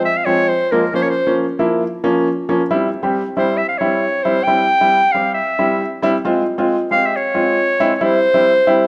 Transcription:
0.05 E5
0.17 F5
0.25 F3 G#3 C4 C#5
0.48 C5
0.72 F3 G#3 A#3 A#4
0.94 F3 A#3 C#4 C5
1.02 C#5
1.09 C5
1.27 F3 A#3 C#4
1.59 F3 A#3 E4
2.04 F3 A#3 C#4
2.49 F3 A#3 C#4
2.71 G3 C4 E4
3.03 G3 C4 G4
3.37 G3 C4 E4 C5
3.57 E5
3.68 F5
3.78 G3 C4 E4 C#5
4.23 G3 C4 E4 C5
4.43 G3 E4 G5
4.48 C4
4.81 G3 C4 E4
5.12 G3 C4 G4 F5
5.34 E5
5.59 G3 C4 E4
6.02 G3 C4 E4
6.25 G#3 C4 F4
6.58 G#3 C4 F4
6.91 G#3 C4 G4 F5
7.06 E5
7.16 C#5
7.34 G#3 C4 F4
7.80 G#3 C4 E4
7.96 C#5
8.01 G3 C4 E4 C5
8.34 G3 C4 E4
8.67 G3 C4 E4

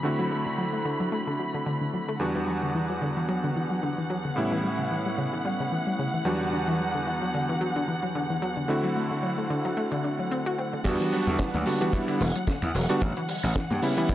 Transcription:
Already playing: B5
0.03 D3 A3 C4 E4 F#4
0.19 F#3
0.31 A3
0.46 D3
0.58 F#3
0.73 A3
0.85 D3
1.00 F#3
1.12 A3
1.27 D3
1.39 F#3
1.55 D3
1.66 D3
1.81 D3
1.94 F#3
2.09 A3
2.19 E2 D3 G3 B3 D4 F#4 F#5
2.36 E3
2.48 F#3
2.63 D3
2.75 E3
2.90 F#3
3.02 D3
3.17 E3
3.29 F#3
3.44 D3
3.56 E3
3.71 F#3
3.83 D3
3.98 E3
4.10 F#3
4.25 D3
4.36 A2 C#3 G3 B3 C#4 E4
4.52 E3
4.64 G3
4.79 C#3
4.91 E3
5.06 G3
5.18 C#3
5.33 E3
5.45 G3
5.60 C#3
5.72 E3
5.87 G3
5.99 C#3
6.14 E3
6.25 E2 F#3 G3 B3 D4 F#4
6.41 D3
6.53 D3
6.68 E3
6.80 F#3
6.95 D3
7.07 E3
7.22 F#3
7.34 D3
7.49 E3
7.61 F#3
7.76 D3
7.88 E3
8.03 F#3
8.15 D3
8.30 E3
8.42 F#3
8.57 D3
8.68 D3 A3 C4 E4 F#4
8.84 F#3
8.96 A3
9.11 D3
9.23 F#3
9.38 A3
9.50 D3
9.65 F#3
9.77 A3
9.92 D3
10.04 D4
10.19 F#3
10.31 C4
10.46 F#4
10.59 C4
10.73 D3
10.84 E2 D3 G3 B3 D4 F#4 F#5, kick, closed hi-hat, crash, maracas, shaker
11.00 E3, closed hi-hat, maracas
11.12 F#3, open hi-hat, maracas, shaker
11.27 E2 D3, closed hi-hat, maracas, shaker
11.39 E3, kick, snare, closed hi-hat, maracas, shaker
11.54 D2 F#3, closed hi-hat, high conga, maracas
11.66 D3 G3 B3 D4 F#4, open hi-hat, maracas, shaker
11.81 E3 G3 B3 D4 F#4, closed hi-hat, maracas, shaker
11.93 F#3 G3 B3 D4 E4, kick, closed hi-hat, maracas, shaker
12.08 D3, finger snap, closed hi-hat, shaker, maracas
12.20 E1 E3, open hi-hat, high conga, maracas, shaker
12.35 F#3, closed hi-hat, maracas, shaker
12.47 D3, kick, snare, closed hi-hat, shaker, maracas
12.62 E2 E3, finger snap, closed hi-hat, maracas
12.75 E1 F#3, open hi-hat, shaker, maracas
12.89 D3 G3 B3 D4 F#4, closed hi-hat, maracas, shaker
13.01 A1 C#3, kick, closed hi-hat, maracas
13.17 E3, closed hi-hat, maracas
13.28 G3, open hi-hat, maracas, shaker
13.43 A1 C#3, finger snap, open hi-hat, shaker, maracas
13.56 E3, kick, snare, closed hi-hat, shaker, maracas
13.70 G2 G3, closed hi-hat, high conga, maracas
13.82 C#3 G3 B3 C#4 E4, open hi-hat, shaker, maracas
13.97 E3 G3 B3 C#4 E4, closed hi-hat, shaker, maracas
14.09 G3 B3 C#4 E4, kick, closed hi-hat, shaker, maracas

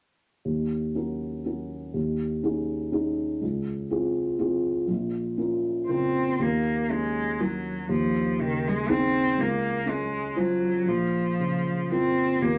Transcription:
0.45 D#2
0.95 C#4 F#4 A#4
1.46 C#4 F#4 A#4
1.94 D#2
2.43 C#4 D#4 G#4
2.92 C#4 D#4 G#4
3.41 C#2
3.90 C4 F4 G#4
4.39 C4 F4 G#4
4.88 A#1
5.38 C#4 F4 A#4
5.88 C#3 C4 F4 A#4
6.39 D#2 A#3
6.90 G#3 C#4
7.41 F#3 F#4 A#4
7.89 D#2 F3
8.39 C#3 D#3
8.67 G#3
8.89 C4 D#4 G#4
9.38 C#2 A#3
9.86 G#3 C#4
10.36 F#3 F4 C5
10.86 A#1 F3
11.40 C#3
11.91 C4 F4 A#4
12.41 D#2 A#3

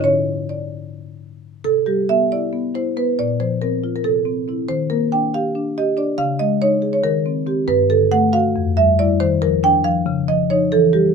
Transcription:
0.00 D3 C#4 E4 C#5
0.49 D5
1.64 C3 A4
1.86 G3 G4
2.09 B3 E5
2.32 E4 D5
2.53 B3
2.75 E4 C5
2.97 B3 B4
3.19 A#2 D5
3.40 F3 C5
3.62 C4 A#4
3.84 F4
3.96 A#4
4.04 C3 A4
4.25 C4
4.48 C4 E4
4.68 D#3 C5
4.90 A#3 A#4
5.12 D4 G5
5.34 G4 F5
5.55 D4
5.78 G4 D#5
5.97 D4 D5
6.18 C#3 F5
6.39 G#3 D#5
6.62 D#4 C#5
6.82 G#4
6.93 C#5
7.03 D#3 A#4
7.26 C4
7.47 C4 G4
7.68 G2 B4
7.90 D3 A4
8.12 A3 F#5
8.33 F#4 F5
8.56 F2
8.77 G3 E5
8.99 G3 E4 D5
9.20 D#3 C5
9.42 F3 A#4
9.63 D4 G5
9.84 F3 F5
10.06 C#3
10.28 F3 D#5
10.50 F3 D#4 C#5
10.72 E3 A4
10.93 G3 G4

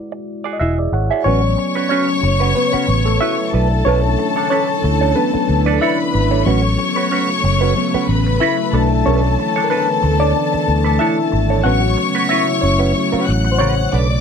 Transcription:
Already playing: G#3 E4 F#4 D5
0.12 muted clean electric guitar stroke
0.44 F#4 G#4 D5
0.53 D#5
0.59 E1 E4 F#4 G#4 E5
0.79 G#4 D5
0.92 G#1 C#5 F#5, muted clean electric guitar stroke
1.10 F#4 G#4 D5 E5 G#5
1.24 A1 C#3 F#3 A3 B3 C#4 F#4 B4 C#5 C#6
1.58 muted clean electric guitar stroke
1.75 C#4 F#4 B4
1.89 C#4 F#4 B4 C#5
2.23 F#1, muted clean electric guitar stroke
2.40 C#4 F#4 B4
2.55 B3 B4, muted clean electric guitar stroke
2.73 C#4 F#4 B4, muted fingered electric bass stroke
2.88 A1
3.06 A3 A4, muted clean electric guitar stroke
3.21 C#4 E4 F#4 B4 E5
3.39 muted clean electric guitar stroke
3.52 B1 D3 E3 F#3 A3 D4 A4 B4 A5
3.85 B1 C#4 D4 A4 B4 C#5
4.04 muted clean electric guitar stroke
4.18 muted clean electric guitar stroke
4.36 D4 A4 C#5
4.50 C#4 D4 A4 B4 C#5
4.84 D2, muted clean electric guitar stroke
5.01 D4 A4 C#5
5.15 F#3 A3 B3 D4 B4, muted clean electric guitar stroke
5.34 muted clean electric guitar stroke, muted fingered electric bass stroke
5.49 D2
5.66 D4 A4 B4 D5
5.81 D4 E4 A4 B4 C#5 E5 B5
6.14 G#1, muted clean electric guitar stroke
6.31 D4 A4 C#5
6.45 A1 C#3 F#3 B3 C#4 F#4 B4 C#5 C#6
6.79 muted clean electric guitar stroke
6.96 C#4 F#4 B4
7.11 C#4 F#4 B4
7.44 F#1, muted clean electric guitar stroke
7.61 C#4 F#4 B4
7.76 F#3 B3 C#4, muted clean electric guitar stroke
7.94 C#4 F#4 B4, muted fingered electric bass stroke
8.09 A1 B4 B5
8.27 muted clean electric guitar stroke
8.40 C#4 E4 F#4 B4 E5
8.59 muted clean electric guitar stroke
8.72 B1 D3 E3 F#3 A3 D4 A4 B4 A5
8.93 muted clean electric guitar stroke
9.06 B1 C#4 D4 A4 B4 C#5
9.24 muted clean electric guitar stroke
9.39 muted clean electric guitar stroke
9.56 D4 A4 C#5
9.64 A#4
9.70 B3 D4 A4 B4
10.03 D2, muted clean electric guitar stroke
10.20 D4 A4 C#5 D5
10.35 muted clean electric guitar stroke
10.53 muted clean electric guitar stroke, muted fingered electric bass stroke
10.68 D2
10.84 D4 A4 B4
10.99 D4 E4 A4 C#5 E5
11.32 G#1, muted clean electric guitar stroke
11.50 D4 A4 C#5
11.64 A1 C#3 F#3 B3 C#4 F#4 B4 C#5 F#5 C#6
11.82 muted clean electric guitar stroke
11.98 muted clean electric guitar stroke
12.15 C#4 F#4 B4
12.29 C#4 E4 F#4 B4 E5
12.61 F#1 C#4 C#5, muted clean electric guitar stroke
12.79 C#4 F#4 B4
13.12 C#4 F#4 B4, muted fingered electric bass stroke
13.27 A1 F#5 F#6
13.45 muted clean electric guitar stroke
13.52 C5
13.59 C#3 C#4 F#4 B4 C#5
13.77 muted clean electric guitar stroke
13.91 B1 B2 E3 A3 D4 A4 B4 D5 D6

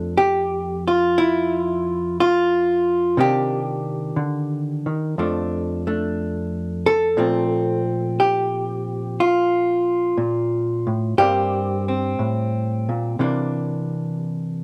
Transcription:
Already playing: F2 F3 A3 D4 A4
0.18 G4
0.88 F4
1.18 E4
2.20 F4
3.17 C3 D#3 A#3 D4 G4
4.16 D3
4.86 D#3
5.18 F2 F3 A3 D4
5.87 A3 D4
6.86 A4
7.17 A#2 F3 A3 C4
8.20 G4
9.20 F4
10.18 A#2
10.87 A2
11.18 G2 G3 A#3 C4 G4
11.88 C4
12.19 A2
12.89 A#2
13.19 C3 E3 A#3 D4

